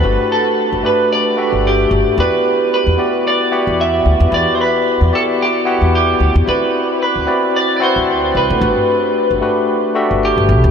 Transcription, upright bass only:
X:1
M:4/4
L:1/16
Q:"Swing 16ths" 1/4=112
K:Em
V:1 name="Upright bass" clef=bass
G,,, z4 G,,, z4 z G,,,3 G,,, z | E,, z4 E,, z4 z E,,3 D,, E,, | E,, z4 E,, z4 z E,,3 D,, E,, | D,, z4 D,, z4 z D,,3 C,, D,, |
G,,, z4 G,,, z4 z G,,,2 G,,, B,,, D,, |]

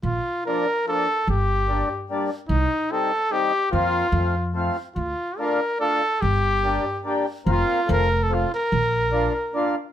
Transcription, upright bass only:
X:1
M:3/4
L:1/8
Q:"Swing" 1/4=145
K:Bb
V:1 name="Upright bass" clef=bass
B,,, z4 z | G,,,4 z2 | C,, z4 z | F,,2 F,,4 |
D,, z4 z | G,,,4 z2 | F,,, z F,,,4 | B,,,4 z2 |]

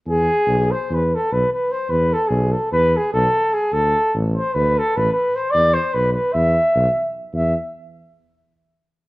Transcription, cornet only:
X:1
M:9/8
L:1/8
Q:3/8=99
K:none
V:1 name="Cornet"
^G3 c B A B B c | B A ^G A B G A2 G | A2 z c B A B B c | d c B B e4 z |
e z8 |]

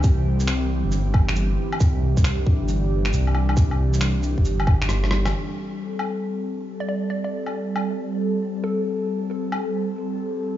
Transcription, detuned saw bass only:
X:1
M:4/4
L:1/16
Q:"Swing 16ths" 1/4=136
K:Am
V:1 name="Detuned saw bass" clef=bass
C,,6- C,, G,,,6- G,,, z2 | C,,6- C,, G,,,4- G,,, C,,4 | C,,6- C,, G,,, G,,,8 | z16 |
z16 | z16 |]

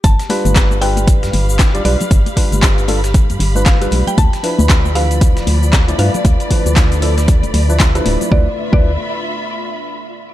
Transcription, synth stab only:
X:1
M:4/4
L:1/16
Q:"Swing 16ths" 1/4=116
K:Ddor
V:1 name="Synth stab"
z2 [G,DFB]4 [G,DFB]6- [G,DFB] [G,DFd] [G,DFB] z | z2 [G,DFB]4 [G,DFA] z4 [G,DFB]2 [G,DFB]3 | z2 [F,DEB]4 [E,F,DB]6- [E,F,DB] [F,DEd] [F,DEB] z | z2 [E,F,DB]4 [F,DEA] z4 [F,DEB]2 [F,DEB]3 |
[F,DEB] z2 [F,DEB]2 z8 z3 |]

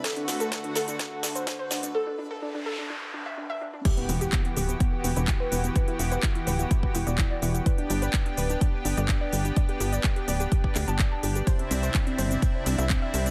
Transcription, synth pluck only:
X:1
M:4/4
L:1/16
Q:1/4=126
K:Em
V:1 name="Synth pluck"
A D D A D D A D D z D c D c D D | A D D A D D A D D z D e D e D D | G B, B, G B, B, G B, B, z B, B B, B B, B, | B E E B E E B E E z E d E d E E |
B D D B D D B D D z D d D d D D | d G G d G G d G G z G a z a G G | c C C c C C c C C z C e C e C C |]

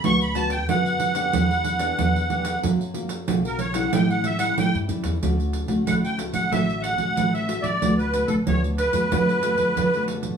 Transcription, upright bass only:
X:1
M:4/4
L:1/16
Q:1/4=92
K:Amix
V:1 name="Upright bass" clef=bass
D,,4 F,,4 E,,4 E,,4 | F,,4 B,,,4 A,,,4 A,,, G,, F,, E,, | [K:D] D,,3 D,, D,,3 A,,, A,,,3 A,,, A,,,3 A,,, | D,,3 D,, D,,3 F,, F,,3 F,, F,,3 A,,, |]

